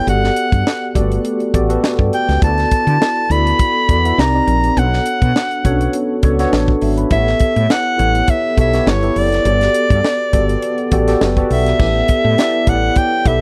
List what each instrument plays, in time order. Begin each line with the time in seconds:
Already playing: tine electric piano E4 A4 C#5
0.07 fretless electric bass G1, tine electric piano B3 F#4 G4 A4 D5, soprano saxophone F#5, closed hi-hat
0.24 snare
0.36 closed hi-hat
0.52 fretless electric bass G2, kick, closed hi-hat
0.67 snare
0.95 fretless electric bass G1, tine electric piano A3 F#4 G4 A4 D5, kick, closed hi-hat
1.01 tine electric piano B3
1.12 closed hi-hat
1.25 closed hi-hat
1.40 closed hi-hat
1.54 fretless electric bass A1, tine electric piano B3 F#4 G4 A4 D5, kick, closed hi-hat
1.69 tine electric piano B3 F#4 G4 A4 B4, closed hi-hat
1.84 snare
1.98 fretless electric bass G2, tine electric piano B3 F#4 G4 A4 D5, kick
2.13 soprano saxophone G5, closed hi-hat
2.28 fretless electric bass C#2, snare, closed hi-hat
2.42 fretless electric bass D2, tine electric piano B3 E4 F#4 A4 D5, soprano saxophone A5, kick, closed hi-hat
2.58 snare, closed hi-hat
2.71 kick, closed hi-hat
2.87 fretless electric bass D3, closed hi-hat
3.02 snare
3.30 fretless electric bass D2, tine electric piano B3 E4 F#4 A4 D5, soprano saxophone B5, closed hi-hat
3.47 closed hi-hat
3.59 kick, closed hi-hat
3.89 fretless electric bass E2, tine electric piano B3 E4 F#4 A4 D5, kick, closed hi-hat
4.05 tine electric piano B3 E4 F#4 A4 E5, closed hi-hat
4.18 fretless electric bass C2, tine electric piano C4 D#4 G4 A#4 D5, soprano saxophone A#5, snare
4.34 tine electric piano C4 D#4 G4 A#4 D5
4.47 fretless electric bass A#1, closed hi-hat
4.64 closed hi-hat
4.77 fretless electric bass B1, tine electric piano B3 D4 F#4 A4 C#5, soprano saxophone F#5, closed hi-hat
4.93 snare
5.06 closed hi-hat
5.22 fretless electric bass B2, kick, closed hi-hat
5.36 snare
5.51 closed hi-hat
5.65 fretless electric bass B1, tine electric piano B3 C#4 F#4 A4 C#5, kick, closed hi-hat
5.71 tine electric piano D4
5.81 closed hi-hat
5.93 closed hi-hat
6.23 fretless electric bass C#2, tine electric piano B3 D4 F#4 A4 C#5, kick, closed hi-hat
6.39 tine electric piano B3 D4 F#4 A4 C#5, snare, closed hi-hat
6.52 fretless electric bass A1, snare
6.68 tine electric piano F#5, kick
6.81 fretless electric bass G#1, tine electric piano E5 A5, open hi-hat
6.98 tine electric piano F#5 B5, closed hi-hat
7.11 fretless electric bass A1, tine electric piano B3 E4 G4 A4 C#5, soprano saxophone E5, kick, closed hi-hat
7.27 snare
7.40 kick, closed hi-hat
7.56 fretless electric bass A2, closed hi-hat
7.70 soprano saxophone F#5, snare
7.98 fretless electric bass A1, tine electric piano B3 E4 G4 A4 C#5, closed hi-hat
8.15 closed hi-hat
8.28 soprano saxophone E5, kick, closed hi-hat
8.57 fretless electric bass B1, tine electric piano B3 E4 G4 A4 C#5, soprano saxophone E5, kick, closed hi-hat
8.73 tine electric piano B3 E4 G4 A4 C#5, snare, closed hi-hat
8.86 fretless electric bass G1, soprano saxophone C#5, snare
9.03 tine electric piano B3 E4 G4 A4 C#5, closed hi-hat
9.16 fretless electric bass F#1, soprano saxophone D5, open hi-hat
9.32 snare, closed hi-hat
9.45 fretless electric bass G1, tine electric piano B3 F#4 G4 A4 C#5, closed hi-hat
9.53 tine electric piano D5
9.61 snare, closed hi-hat
9.74 closed hi-hat
9.90 fretless electric bass G2, kick, closed hi-hat
10.04 snare
10.33 fretless electric bass G1, tine electric piano B3 F#4 G4 A4 D5, kick, closed hi-hat
10.49 closed hi-hat
10.63 closed hi-hat
10.78 closed hi-hat
10.92 fretless electric bass A1, tine electric piano B3 F#4 G4 A4 D5, kick, closed hi-hat
11.08 tine electric piano B3 F#4 G4 A4 D5, snare, closed hi-hat
11.21 fretless electric bass F#1, snare
11.37 tine electric piano B3 F#4 G4 A4 D5, kick, closed hi-hat
11.50 fretless electric bass B1, soprano saxophone E5, open hi-hat
11.66 snare, closed hi-hat
11.79 fretless electric bass A1, tine electric piano B3 E4 G4 A4 C#5, kick, crash
11.87 tine electric piano D5
12.08 kick, closed hi-hat
12.24 fretless electric bass A2
12.38 tine electric piano B3 E4 G4 A4 D5, snare, closed hi-hat
12.67 fretless electric bass A1, tine electric piano B3 E4 G4 A4 C#5, soprano saxophone F#5, kick, closed hi-hat
12.75 tine electric piano D5
12.96 soprano saxophone G5, kick, closed hi-hat
13.25 fretless electric bass B1, tine electric piano B3 E4 G4 A4 B4, soprano saxophone E5, kick, closed hi-hat